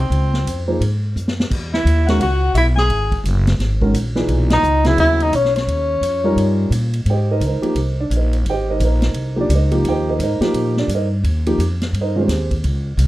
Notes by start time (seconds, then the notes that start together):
Already playing: C4 C5
0.10 C#2, ride
0.34 snare
0.46 F2, hi-hat pedal, ride
0.68 F3 A#3 D#4 G#4 C5
0.80 G#2, ride
1.16 F#2, hi-hat pedal
1.28 snare
1.40 snare
1.51 E2, kick, crash
1.73 E4 E5, snare
1.85 D#2, hi-hat pedal, ride
2.07 D#3 G#3 C#4 F#4 A#4 F#5, snare, ride
2.20 C#2 F#4 F#5, ride
2.54 B1 E4 E5, hi-hat pedal, ride
2.76 G#4 G#5, snare
2.89 G#1, ride
3.12 kick, ride
3.24 F#1, hi-hat pedal, ride
3.47 snare, ride
3.59 G#1, snare, ride
3.82 D#3 G#3 C#4 F#4 A#4, kick
3.94 A#1, hi-hat pedal, ride
4.15 A#2 E3 D#4 G#4 B4, snare
4.28 B1, ride
4.50 D#4 D#5, snare, ride
4.63 C#2, hi-hat pedal
4.85 C#3 F#3 B3 E4 G#4 E5, snare, ride
4.98 D#2 E4 E5, ride
5.20 D#4 D#5, ride
5.33 B1 C#4 C#5, hi-hat pedal, ride
5.45 snare
5.56 C#4 C#5, snare, ride
5.67 D#2, ride
6.01 F2, hi-hat pedal, ride
6.24 G3 C#4 D#4 F4 A#4
6.36 G2, ride
6.71 A#2, hi-hat pedal, ride
6.94 ride
7.06 G#2, ride
7.10 G4 C5 D#5 G5
7.31 D#4 A#4 C5 D#5
7.40 C#2, hi-hat pedal, ride
7.46 D#4 A#4 C5 D#5
7.62 F3 A#3 D#4 G4, muted upright bass stroke, ride
7.75 C2, ride
8.00 D4 D5
8.10 A#1, hi-hat pedal, ride
8.16 D#4 A#4 C5 D#5
8.33 ride
8.45 G#1, ride
8.50 G4 C5 D#5 G5
8.70 D#4 A#4 C5 D#5
8.80 A#1, hi-hat pedal, ride
8.84 D#4 A#4 C5 D#5
9.02 snare, ride
9.14 C2, ride
9.36 F3 A#3 D#4 G4
9.41 D4 D5
9.49 C#2, hi-hat pedal, ride
9.55 D#4 A#4 C5 D#5
9.71 F3 A#3 D#4 G4, ride
9.85 D#2, ride
9.89 G4 C5 D#5 G5
10.09 D#4 A#4 C5 D#5
10.19 G#2, hi-hat pedal, ride
10.23 D#4 A#4 C5 D#5
10.40 F3 A#3 D#4 G4, muted upright bass stroke, snare, ride
10.54 A#2, ride
10.77 D4 D5, snare
10.88 G2, hi-hat pedal, ride
10.94 D#4 A#4 C5 D#5
11.24 D#2, ride
11.46 F3 A#3 D#4 G4, ride
11.58 F2, hi-hat pedal, ride
11.82 snare, ride
11.93 G2, ride
12.01 D#4 A#4 C5 D#5
12.16 D#3 G#3 C#4 F4
12.20 C4 G4 G#4 C5
12.28 D#2, snare, hi-hat pedal, ride
12.51 kick, ride
12.64 C#2, ride
12.97 C2, hi-hat pedal, ride